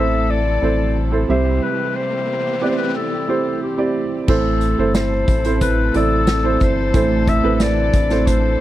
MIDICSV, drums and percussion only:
0, 0, Header, 1, 2, 480
1, 0, Start_track
1, 0, Tempo, 665188
1, 1173, Time_signature, 4, 2, 24, 8
1, 6210, End_track
2, 0, Start_track
2, 0, Title_t, "Drums"
2, 3089, Note_on_c, 9, 49, 86
2, 3091, Note_on_c, 9, 36, 102
2, 3161, Note_off_c, 9, 49, 0
2, 3163, Note_off_c, 9, 36, 0
2, 3327, Note_on_c, 9, 42, 70
2, 3399, Note_off_c, 9, 42, 0
2, 3568, Note_on_c, 9, 42, 85
2, 3570, Note_on_c, 9, 38, 98
2, 3640, Note_off_c, 9, 42, 0
2, 3642, Note_off_c, 9, 38, 0
2, 3809, Note_on_c, 9, 36, 95
2, 3809, Note_on_c, 9, 42, 74
2, 3881, Note_off_c, 9, 42, 0
2, 3882, Note_off_c, 9, 36, 0
2, 3929, Note_on_c, 9, 42, 56
2, 4002, Note_off_c, 9, 42, 0
2, 4049, Note_on_c, 9, 42, 91
2, 4051, Note_on_c, 9, 36, 86
2, 4121, Note_off_c, 9, 42, 0
2, 4123, Note_off_c, 9, 36, 0
2, 4289, Note_on_c, 9, 42, 71
2, 4361, Note_off_c, 9, 42, 0
2, 4524, Note_on_c, 9, 42, 85
2, 4528, Note_on_c, 9, 38, 106
2, 4596, Note_off_c, 9, 42, 0
2, 4600, Note_off_c, 9, 38, 0
2, 4766, Note_on_c, 9, 42, 59
2, 4771, Note_on_c, 9, 36, 93
2, 4838, Note_off_c, 9, 42, 0
2, 4843, Note_off_c, 9, 36, 0
2, 5008, Note_on_c, 9, 42, 82
2, 5009, Note_on_c, 9, 36, 104
2, 5080, Note_off_c, 9, 42, 0
2, 5081, Note_off_c, 9, 36, 0
2, 5249, Note_on_c, 9, 42, 70
2, 5250, Note_on_c, 9, 36, 92
2, 5321, Note_off_c, 9, 42, 0
2, 5322, Note_off_c, 9, 36, 0
2, 5482, Note_on_c, 9, 42, 82
2, 5484, Note_on_c, 9, 38, 102
2, 5555, Note_off_c, 9, 42, 0
2, 5556, Note_off_c, 9, 38, 0
2, 5725, Note_on_c, 9, 42, 81
2, 5727, Note_on_c, 9, 36, 94
2, 5797, Note_off_c, 9, 42, 0
2, 5799, Note_off_c, 9, 36, 0
2, 5845, Note_on_c, 9, 38, 37
2, 5848, Note_on_c, 9, 42, 58
2, 5917, Note_off_c, 9, 38, 0
2, 5920, Note_off_c, 9, 42, 0
2, 5970, Note_on_c, 9, 36, 87
2, 5970, Note_on_c, 9, 42, 93
2, 6042, Note_off_c, 9, 36, 0
2, 6042, Note_off_c, 9, 42, 0
2, 6210, End_track
0, 0, End_of_file